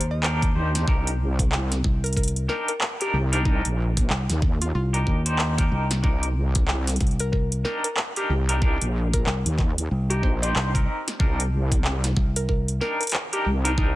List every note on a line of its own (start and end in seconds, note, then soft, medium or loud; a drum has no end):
0.00 0.53 D#2 medium
0.00 closed hi-hat medium
0.11 0.75 D#5 medium
0.23 0.52 D4 loud
0.23 0.52 D#4 medium
0.23 0.52 G4 medium
0.23 0.52 A#4 loud
0.23 clap loud
0.42 kick loud
0.42 closed hi-hat soft
0.55 0.86 D#2 loud
0.55 0.85 D4 medium
0.55 0.85 D#4 medium
0.55 0.85 G4 medium
0.55 0.85 C5 medium
0.75 snare medium
0.75 closed hi-hat medium
0.87 1.82 C2 loud
0.87 1.10 D4 medium
0.87 1.10 D#4 medium
0.87 1.10 G4 medium
0.87 1.10 A#4 medium
0.87 kick loud
1.07 closed hi-hat medium
1.39 kick loud
1.39 closed hi-hat medium
1.52 clap loud
1.72 snare soft
1.72 closed hi-hat medium
1.84 2.47 C2 loud
1.84 kick loud
2.04 2.12 A#4 medium
2.04 closed hi-hat soft
2.06 closed hi-hat soft
2.13 2.29 A#4 medium
2.13 kick medium
2.13 closed hi-hat soft
2.17 closed hi-hat soft
2.23 closed hi-hat medium
2.28 closed hi-hat medium
2.36 closed hi-hat soft
2.48 2.71 D4 medium
2.48 2.71 D#4 medium
2.48 2.71 G4 medium
2.48 2.71 A#4 medium
2.48 2.62 A#4 medium
2.48 snare soft
2.68 2.77 A#4 medium
2.68 closed hi-hat medium
2.81 clap loud
3.00 3.17 D4 medium
3.00 3.17 D#4 medium
3.00 3.17 G4 medium
3.00 3.09 G4 medium
3.00 3.17 A#4 medium
3.00 closed hi-hat soft
3.13 3.62 C2 medium
3.13 3.26 G4 medium
3.32 3.44 D4 medium
3.32 3.44 D#4 medium
3.32 3.42 D#4 medium
3.32 3.44 G4 medium
3.32 3.44 A#4 loud
3.32 closed hi-hat medium
3.45 3.67 D4 loud
3.45 3.67 D#4 medium
3.45 3.58 D#4 medium
3.45 3.67 A#4 loud
3.45 kick loud
3.65 4.08 A#1 loud
3.65 closed hi-hat medium
3.97 kick loud
3.97 closed hi-hat medium
4.10 4.27 C2 loud
4.10 clap loud
4.30 4.73 D#2 loud
4.30 snare soft
4.30 closed hi-hat soft
4.42 kick loud
4.62 4.72 F4 medium
4.62 closed hi-hat medium
4.75 5.05 C2 loud
4.75 5.27 F4 medium
4.93 5.21 D4 medium
4.93 5.21 D#4 medium
4.93 5.22 G4 medium
4.93 5.22 A#4 medium
4.93 closed hi-hat soft
5.07 5.69 D#2 medium
5.07 kick medium
5.26 5.53 D4 medium
5.26 5.53 D#4 medium
5.26 5.53 G4 medium
5.26 5.53 C5 loud
5.26 closed hi-hat medium
5.39 clap loud
5.58 5.89 D4 medium
5.58 5.89 D#4 medium
5.58 5.89 G4 medium
5.58 5.89 A#4 medium
5.58 kick loud
5.58 closed hi-hat soft
5.72 6.02 C2 loud
5.91 snare medium
5.91 closed hi-hat medium
6.03 6.98 C2 medium
6.03 6.25 D4 medium
6.03 6.25 D#4 medium
6.03 6.25 G4 medium
6.03 6.25 A#4 medium
6.03 kick loud
6.23 closed hi-hat medium
6.55 kick loud
6.55 closed hi-hat medium
6.68 clap loud
6.87 snare soft
6.87 closed hi-hat soft
6.89 closed hi-hat soft
6.96 closed hi-hat soft
7.00 7.63 C2 loud
7.00 kick loud
7.00 closed hi-hat soft
7.07 closed hi-hat soft
7.11 closed hi-hat soft
7.20 7.28 A#4 medium
7.20 closed hi-hat medium
7.32 7.45 A#4 medium
7.32 kick medium
7.52 closed hi-hat soft
7.65 7.87 D4 medium
7.65 7.87 D#4 medium
7.65 7.87 G4 medium
7.65 7.87 A#4 medium
7.65 7.77 A#4 medium
7.65 snare soft
7.84 7.93 A#4 medium
7.84 closed hi-hat medium
7.97 clap loud
8.16 8.33 D4 medium
8.16 8.33 D#4 medium
8.16 8.33 G4 medium
8.16 8.25 G4 medium
8.16 8.33 A#4 loud
8.16 closed hi-hat soft
8.29 8.78 C2 medium
8.29 8.42 G4 medium
8.49 8.60 D4 medium
8.49 8.60 D#4 medium
8.49 8.60 G4 medium
8.49 8.60 A#4 loud
8.49 closed hi-hat medium
8.61 8.84 D4 loud
8.61 8.84 D#4 medium
8.61 8.84 G4 medium
8.61 8.84 A#4 medium
8.61 kick loud
8.81 9.24 A#1 loud
8.81 closed hi-hat medium
9.14 9.22 A#4 medium
9.14 kick loud
9.14 closed hi-hat medium
9.26 9.43 C2 loud
9.26 9.39 A#4 medium
9.26 clap loud
9.46 9.89 D#2 loud
9.46 closed hi-hat medium
9.59 kick loud
9.59 clap soft
9.78 closed hi-hat medium
9.91 10.21 C2 medium
10.10 10.38 D4 medium
10.10 10.38 D#4 medium
10.10 10.38 G4 medium
10.10 10.20 G4 medium
10.10 10.38 A#4 medium
10.10 closed hi-hat soft
10.23 10.53 A#1 medium
10.23 10.39 C5 medium
10.23 kick medium
10.42 10.69 D4 medium
10.42 10.69 D#4 medium
10.42 10.69 G4 medium
10.42 10.69 C5 loud
10.42 11.07 D#5 loud
10.42 closed hi-hat medium
10.56 10.86 C2 loud
10.56 clap loud
10.75 11.05 C4 medium
10.75 11.05 D#4 medium
10.75 11.05 G4 medium
10.75 11.05 A#4 medium
10.75 kick loud
10.75 closed hi-hat soft
11.08 snare medium
11.08 closed hi-hat medium
11.19 12.15 C2 medium
11.19 11.42 D4 medium
11.19 11.42 D#4 medium
11.19 11.42 G4 medium
11.19 11.42 A#4 medium
11.19 kick loud
11.40 closed hi-hat medium
11.72 kick loud
11.72 closed hi-hat medium
11.84 clap loud
12.04 snare soft
12.04 closed hi-hat medium
12.17 12.79 C2 loud
12.17 kick loud
12.36 12.44 A#4 medium
12.36 closed hi-hat medium
12.49 12.61 A#4 medium
12.49 kick medium
12.68 closed hi-hat soft
12.81 13.03 D4 medium
12.81 13.03 D#4 medium
12.81 13.03 G4 medium
12.81 13.03 A#4 medium
12.81 12.94 A#4 medium
12.81 snare soft
13.00 13.09 A#4 medium
13.00 closed hi-hat soft
13.03 closed hi-hat soft
13.07 closed hi-hat medium
13.09 closed hi-hat medium
13.11 clap loud
13.11 closed hi-hat medium
13.32 13.49 D4 medium
13.32 13.49 D#4 medium
13.32 13.49 G4 medium
13.32 13.41 G4 medium
13.32 13.49 A#4 loud
13.32 closed hi-hat soft
13.45 13.94 C2 medium
13.45 13.58 G4 medium
13.65 13.76 D4 loud
13.65 13.73 D#4 loud
13.65 13.76 D#4 loud
13.65 13.76 G4 medium
13.65 13.76 A#4 loud
13.65 closed hi-hat medium
13.77 13.96 D4 loud
13.77 13.96 D#4 medium
13.77 13.90 D#4 medium
13.77 13.96 G4 medium
13.77 13.96 A#4 loud
13.77 kick loud